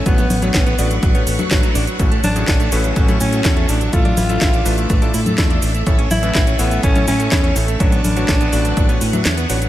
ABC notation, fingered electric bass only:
X:1
M:4/4
L:1/8
Q:1/4=124
K:Bdor
V:1 name="Fingered electric bass" clef=bass
A,,, A,,, A,,, A,,, A,,, A,,, A,,, A,,, | A,,, A,,, A,,, A,,, A,,, A,, E,, A,,, | A,,, A,,, A,,, A,,, A,,, A,, E,, A,,, | A,,, A,,, A,,, A,,, A,,, A,, E,, A,,, |
A,,, A,,, A,,, A,,, A,,, A,, E,, A,,, |]